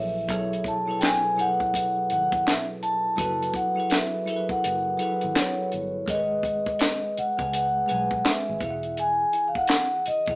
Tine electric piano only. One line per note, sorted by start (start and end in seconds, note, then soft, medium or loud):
0.00 0.29 F#3 medium
0.00 0.30 E4 medium
0.00 0.31 G#4 medium
0.00 0.31 A4 medium
0.00 0.31 B4 medium
0.00 0.31 C#5 medium
0.28 0.79 B2 medium
0.28 0.79 F#3 medium
0.28 0.80 E4 medium
0.28 0.80 G#4 medium
0.28 0.81 A4 medium
0.33 0.81 C#5 medium
0.86 1.32 B2 medium
0.86 1.32 F#3 medium
0.86 1.32 E4 medium
0.86 1.33 G#4 medium
0.86 1.34 A4 medium
0.91 1.34 B4 medium
1.36 2.68 B2 medium
1.36 2.68 F#3 medium
1.36 2.69 E4 medium
1.36 2.69 G#4 medium
1.36 2.70 A4 medium
1.41 2.70 B4 medium
3.16 3.67 F#3 medium
3.16 3.68 E4 medium
3.16 3.69 F#4 medium
3.16 3.69 A4 medium
3.21 3.70 B4 medium
3.75 4.21 F#3 medium
3.75 4.21 E4 medium
3.75 4.22 G#4 medium
3.75 4.22 A4 medium
3.80 4.23 B4 medium
4.25 4.92 F#3 medium
4.25 4.92 E4 medium
4.25 4.93 G#4 medium
4.25 4.93 A4 medium
4.30 4.37 A#4 medium
4.36 4.97 B4 medium
4.97 5.97 F#3 medium
4.97 5.97 E4 medium
4.97 5.98 G#4 medium
4.97 5.98 A4 medium
5.02 5.99 B4 medium
6.06 7.18 G#3 medium
6.06 7.19 G#4 medium
6.06 6.16 A#4 medium
6.06 7.20 D#5 medium
6.11 7.20 F#5 medium
6.15 7.23 B4 medium
7.37 7.83 G#3 medium
7.37 7.83 G#4 medium
7.37 7.84 B4 medium
7.37 7.84 D#5 medium
7.42 7.85 G#5 medium
7.87 8.60 G#3 medium
7.87 8.60 G#4 medium
7.87 8.61 B4 medium
7.91 8.62 F#5 medium
7.91 8.62 G#5 medium
8.59 9.91 E3 medium
8.59 9.92 E4 medium
8.59 9.92 G#4 medium
8.59 9.93 E5 medium
8.64 8.71 F5 medium
8.71 9.97 F#5 medium
10.27 10.35 E3 medium
10.27 10.35 E4 medium
10.27 10.35 G#4 medium
10.27 10.35 D#5 medium
10.31 10.35 F#5 medium